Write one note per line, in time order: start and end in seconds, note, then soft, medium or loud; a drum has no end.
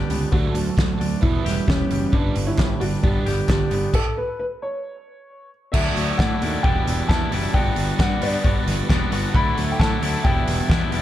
0.00 0.10 G3 medium
0.00 0.33 D4 medium
0.00 0.31 G4 medium
0.00 0.32 G4 medium
0.00 0.34 G4 medium
0.00 0.31 B4 medium
0.00 1.20 D5 medium
0.00 0.31 B5 medium
0.10 0.24 C#2 medium
0.10 0.31 G2 medium
0.10 0.31 D3 medium
0.10 0.33 B3 medium
0.10 open hi-hat medium
0.32 0.47 D2 medium
0.32 0.54 D3 medium
0.32 0.54 F#3 medium
0.32 0.54 A3 medium
0.32 1.19 F#4 medium
0.32 1.22 F#4 medium
0.32 1.22 A4 medium
0.32 1.22 A5 medium
0.32 kick loud
0.54 0.69 D2 medium
0.54 0.76 D3 medium
0.54 0.76 F#3 medium
0.54 open hi-hat medium
0.77 0.92 D2 medium
0.77 0.97 D3 medium
0.77 0.97 F#3 medium
0.77 kick loud
0.77 snare loud
0.98 1.15 D2 medium
0.98 1.19 D3 medium
0.98 1.20 F#3 medium
0.98 1.23 D4 medium
0.98 open hi-hat medium
1.20 1.37 E1 medium
1.20 2.13 E2 medium
1.20 1.43 E3 medium
1.20 1.43 G3 medium
1.20 1.44 B3 medium
1.20 1.69 E4 medium
1.20 3.92 G4 medium
1.20 1.64 B4 medium
1.20 3.92 B4 medium
1.20 2.13 E5 medium
1.20 3.92 B5 medium
1.20 kick loud
1.45 1.60 E1 medium
1.45 1.66 E3 medium
1.45 1.66 G3 medium
1.45 2.13 G4 medium
1.45 snare soft
1.45 open hi-hat medium
1.67 1.82 E1 medium
1.67 1.88 E3 medium
1.67 1.88 G3 medium
1.67 2.13 B3 medium
1.67 2.15 C#4 medium
1.67 2.10 G4 medium
1.67 kick loud
1.67 snare loud
1.91 2.05 F#1 medium
1.91 2.11 E3 medium
1.91 2.11 G3 medium
1.91 open hi-hat medium
2.12 2.27 G1 medium
2.12 2.34 G2 medium
2.12 2.34 D3 medium
2.12 2.34 G3 loud
2.12 2.48 D4 medium
2.12 3.92 D4 medium
2.12 2.44 B4 medium
2.12 kick loud
2.35 2.50 G1 medium
2.35 2.56 G2 medium
2.35 2.56 D3 medium
2.35 open hi-hat medium
2.47 2.82 E4 loud
2.47 2.79 C#5 medium
2.58 2.73 G1 medium
2.58 2.79 G2 medium
2.58 2.79 D3 medium
2.58 3.71 G3 medium
2.58 kick loud
2.58 snare loud
2.58 clap loud
2.80 2.96 G1 medium
2.80 3.01 G2 medium
2.80 3.01 D3 medium
2.80 3.46 D4 medium
2.80 2.85 F#4 medium
2.80 2.91 D5 medium
2.80 open hi-hat medium
3.03 3.18 G1 medium
3.03 3.25 G2 medium
3.03 3.25 D3 medium
3.03 3.25 G3 loud
3.03 3.69 B3 medium
3.03 3.49 G4 medium
3.03 3.45 D5 medium
3.03 kick loud
3.26 3.41 G1 medium
3.26 3.46 G2 medium
3.26 3.47 D3 medium
3.26 3.94 G4 medium
3.26 snare soft
3.26 open hi-hat medium
3.48 3.63 G1 medium
3.48 3.69 G2 medium
3.48 3.69 D3 medium
3.48 3.93 D4 medium
3.48 3.92 G4 medium
3.48 3.91 D5 medium
3.48 kick loud
3.48 snare loud
3.48 clap medium
3.70 3.86 G1 medium
3.70 3.92 G2 medium
3.70 3.92 D3 medium
3.70 3.93 B3 medium
3.70 open hi-hat medium
3.94 4.18 A4 loud
3.94 kick loud
3.94 crash loud
4.17 4.38 B4 loud
4.39 4.44 B4 medium
4.62 5.48 C#5 medium
5.72 5.88 D2 medium
5.72 6.17 D3 medium
5.72 6.18 F#3 medium
5.72 6.18 A3 medium
5.72 6.19 D4 medium
5.72 6.20 E4 loud
5.72 6.64 F#4 medium
5.72 6.16 A4 medium
5.72 7.52 D5 medium
5.72 6.20 E5 medium
5.72 6.63 E5 medium
5.72 6.64 A5 medium
5.72 kick loud
5.72 crash loud
5.96 6.11 D2 medium
5.96 open hi-hat medium
6.17 6.33 A2 medium
6.17 6.40 D3 medium
6.17 6.40 F#3 medium
6.17 6.40 A3 medium
6.17 6.42 D4 medium
6.17 6.42 E4 loud
6.17 6.62 D5 medium
6.17 6.65 F#5 medium
6.17 kick loud
6.17 snare loud
6.41 6.56 D#2 loud
6.41 6.62 D3 medium
6.41 6.63 F#3 medium
6.41 6.63 A3 medium
6.41 6.64 D4 loud
6.41 6.64 E4 loud
6.41 open hi-hat medium
6.62 6.78 E1 medium
6.62 7.07 E2 loud
6.62 7.08 B2 medium
6.62 7.07 E3 loud
6.62 7.08 G3 medium
6.62 9.32 G3 medium
6.62 7.08 B3 loud
6.62 7.10 D4 loud
6.62 7.08 E4 loud
6.62 7.06 E5 medium
6.62 7.54 E5 medium
6.62 7.10 G5 loud
6.62 9.32 B5 medium
6.62 kick loud
6.87 7.01 E1 medium
6.87 open hi-hat medium
7.08 7.30 E2 medium
7.08 7.23 E2 loud
7.08 7.30 B2 medium
7.08 7.30 E3 loud
7.08 7.31 G3 medium
7.08 7.32 B3 loud
7.08 7.32 D4 loud
7.08 7.32 E4 medium
7.08 7.51 E5 loud
7.08 7.55 A5 loud
7.08 kick loud
7.08 snare loud
7.31 7.46 F#1 medium
7.31 7.53 E2 medium
7.31 7.53 B2 medium
7.31 7.53 E3 medium
7.31 7.52 G3 medium
7.31 7.53 B3 medium
7.31 7.55 D4 medium
7.31 7.54 E4 medium
7.31 open hi-hat medium
7.53 7.68 G1 loud
7.53 7.97 G2 medium
7.53 7.98 D3 loud
7.53 7.99 G3 medium
7.53 7.99 B3 loud
7.53 8.00 D4 loud
7.53 8.00 F#4 loud
7.53 7.96 D5 loud
7.53 9.32 D5 medium
7.53 8.01 G5 loud
7.53 kick loud
7.76 7.91 G1 loud
7.76 open hi-hat medium
7.99 8.20 G2 medium
7.99 8.13 G2 medium
7.99 8.21 D3 medium
7.99 8.21 G3 medium
7.99 8.21 B3 medium
7.99 8.22 D4 medium
7.99 8.22 F#4 loud
7.99 8.20 D5 medium
7.99 8.23 F#5 medium
7.99 kick loud
7.99 snare loud
8.21 8.42 G2 medium
8.21 8.36 G2 medium
8.21 8.43 D3 medium
8.21 8.43 G3 medium
8.21 8.44 B3 medium
8.21 8.44 D4 medium
8.21 8.44 F#4 medium
8.21 9.08 B4 medium
8.21 9.09 D5 medium
8.21 open hi-hat medium
8.43 8.58 G1 medium
8.43 8.87 G2 loud
8.43 8.87 D3 loud
8.43 8.87 G3 loud
8.43 8.88 B3 loud
8.43 8.89 D4 loud
8.43 8.89 F#4 loud
8.43 kick loud
8.67 8.80 G1 medium
8.67 snare soft
8.67 open hi-hat loud
8.88 9.03 E1 loud
8.88 9.10 G2 loud
8.88 9.10 D3 medium
8.88 9.11 G3 medium
8.88 9.11 B3 medium
8.88 9.12 D4 loud
8.88 9.12 F#4 loud
8.88 kick loud
8.88 snare loud
9.11 9.26 G1 medium
9.11 9.33 G2 medium
9.11 9.33 D3 medium
9.11 9.33 G3 medium
9.11 9.33 B3 medium
9.11 9.36 D4 medium
9.11 9.34 F#4 loud
9.11 open hi-hat medium
9.34 9.48 D2 medium
9.34 9.78 D3 medium
9.34 9.79 F#3 loud
9.34 9.79 A3 loud
9.34 9.80 D4 loud
9.34 9.80 E4 loud
9.34 10.24 A4 medium
9.34 11.02 E5 medium
9.34 9.70 F#5 loud
9.34 9.74 B5 loud
9.34 11.02 D6 medium
9.34 kick loud
9.57 9.71 D2 loud
9.57 open hi-hat medium
9.72 9.79 E5 medium
9.72 9.79 G5 medium
9.79 9.93 A2 medium
9.79 10.02 D3 loud
9.79 10.02 F#3 medium
9.79 10.02 A3 medium
9.79 10.04 D4 medium
9.79 10.02 E4 loud
9.79 10.21 F#5 loud
9.79 10.21 A5 loud
9.79 kick loud
9.79 snare loud
10.02 10.16 D2 medium
10.02 10.24 D3 medium
10.02 10.24 F#3 medium
10.02 10.24 A3 medium
10.02 10.26 D4 medium
10.02 10.24 E4 loud
10.02 open hi-hat medium
10.24 10.38 E1 loud
10.24 10.67 E2 medium
10.24 10.67 B2 medium
10.24 10.68 E3 loud
10.24 10.69 G3 loud
10.24 10.69 B3 loud
10.24 10.70 D4 loud
10.24 10.69 E4 loud
10.24 11.02 B4 medium
10.24 11.02 D5 medium
10.24 11.02 E5 medium
10.24 11.02 G5 medium
10.24 kick loud
10.47 10.60 E1 medium
10.47 snare soft
10.47 open hi-hat medium
10.68 10.89 E2 loud
10.68 10.83 E2 medium
10.68 10.90 B2 loud
10.68 10.91 E3 medium
10.68 10.91 G3 medium
10.68 10.92 B3 medium
10.68 10.93 D4 loud
10.68 10.92 E4 medium
10.68 kick loud
10.68 snare loud
10.91 11.02 E1 loud
10.91 11.02 E2 medium
10.91 11.02 B2 medium
10.91 11.02 E3 medium
10.91 11.02 G3 medium
10.91 11.02 B3 medium
10.91 11.02 D4 loud
10.91 11.02 E4 medium
10.91 open hi-hat medium